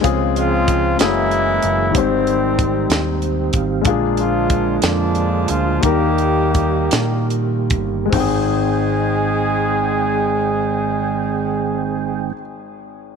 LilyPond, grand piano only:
<<
  \new Staff \with { instrumentName = "Grand piano" } { \time 6/8 \key aes \major \tempo 4. = 58 <aes c' f' aes'>4. <a bes des' fes' ges' aes'>4. | <ees c' ees' g' c''>2. | <aes bes d' f' aes'>2. | <g bes ees' g' bes'>2. |
<aes c' ees' aes' g''>2.~ | <aes c' ees' aes' g''>2. | }
  \new Staff \with { instrumentName = "Grand piano" } { \clef bass \time 6/8 \key aes \major des4. r4. | aes,4. r4. | bes,4. r4. | ees4. r4. |
aes,,2.~ | aes,,2. | }
>>